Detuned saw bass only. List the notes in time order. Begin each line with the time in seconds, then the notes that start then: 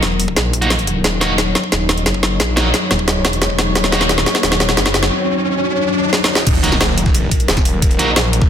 0.03 E1
0.36 A#1
1.04 D#1
1.72 D#1
2.06 F#1
2.40 A#1
2.91 D#1
3.25 E1
3.75 D#1
4.43 D#1
4.77 F#1
6.47 D#1
6.81 D#1
7.48 D#1
7.99 A#1
8.16 A#1